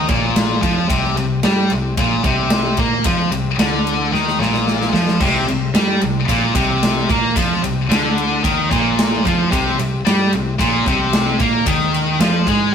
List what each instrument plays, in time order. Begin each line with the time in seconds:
0.08 picked electric bass A#1, overdriven electric guitar A#2, kick, ride
0.36 snare, ride
0.61 picked electric bass F2, overdriven electric guitar F3, kick, ride
0.89 picked electric bass C2, overdriven electric guitar C3, kick, ride
1.04 snare
1.17 picked electric bass C2, overdriven electric guitar C3, ride
1.43 picked electric bass G2, overdriven electric guitar G3, snare, ride
1.70 picked electric bass C2, overdriven electric guitar C3, ride
1.97 picked electric bass A#1, overdriven electric guitar A#2, kick, ride
2.24 picked electric bass C2, overdriven electric guitar C3, kick, ride
2.50 snare, ride
2.77 picked electric bass A#2, overdriven electric guitar A#3, kick, ride
3.04 picked electric bass F2, overdriven electric guitar F3, kick, ride
3.31 picked electric bass C2, overdriven electric guitar C3, ride
3.58 picked electric bass D2, overdriven electric guitar D3, snare, ride
3.87 ride
4.12 picked electric bass D#2, overdriven electric guitar D#3, snare
4.28 snare
4.40 picked electric bass A#1, overdriven electric guitar A#2, snare
4.54 snare
4.67 snare
4.81 snare
4.93 picked electric bass F2, overdriven electric guitar F3, snare
5.08 snare
5.20 picked electric bass C2, overdriven electric guitar C3, kick, crash
5.35 snare
5.47 picked electric bass C2, overdriven electric guitar C3, ride
5.74 picked electric bass G2, overdriven electric guitar G3, snare, ride
6.01 picked electric bass C2, overdriven electric guitar C3, ride
6.27 picked electric bass A#1, overdriven electric guitar A#2, kick, ride
6.54 picked electric bass C2, overdriven electric guitar C3, kick, ride
6.83 snare, ride
7.09 picked electric bass A#2, overdriven electric guitar A#3, kick, ride
7.36 picked electric bass F2, overdriven electric guitar F3, kick, ride
7.62 picked electric bass C2, overdriven electric guitar C3, ride
7.89 picked electric bass D2, overdriven electric guitar D3, snare, ride
8.18 ride
8.44 picked electric bass D#2, overdriven electric guitar D#3, kick, ride
8.71 picked electric bass A#1, overdriven electric guitar A#2, kick, ride
8.99 snare, ride
9.24 picked electric bass F2, overdriven electric guitar F3, kick, ride
9.51 picked electric bass C2, overdriven electric guitar C3, kick, ride
9.78 picked electric bass C2, overdriven electric guitar C3, ride
10.07 picked electric bass G2, overdriven electric guitar G3, snare, ride
10.33 picked electric bass C2, overdriven electric guitar C3, ride
10.59 picked electric bass A#1, overdriven electric guitar A#2, kick, ride
10.86 picked electric bass C2, overdriven electric guitar C3, kick, ride
11.13 snare, ride
11.39 picked electric bass A#2, overdriven electric guitar A#3, kick, ride
11.66 picked electric bass D#2, overdriven electric guitar D#3, kick, ride
11.80 snare
11.94 ride
12.19 picked electric bass F2, overdriven electric guitar F3, snare, ride
12.46 picked electric bass G#2, overdriven electric guitar G#3, kick, ride